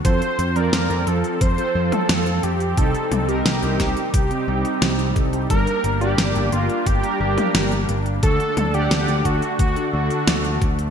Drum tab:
HH |xxxxxxxxxx-xxxxx|xxxxxxxxxx-xxxxx|xxxxxxxxxx-xxxxx|xxxxxxxxxx-xxxxx|
SD |----o-------o---|----o-o-----o---|----o-------o---|----o-------o---|
T2 |-----------o----|--o-------------|-----------o----|--o-------------|
BD |o-------o-------|o-----o-o-----o-|o-------o-------|o-----o-o-----o-|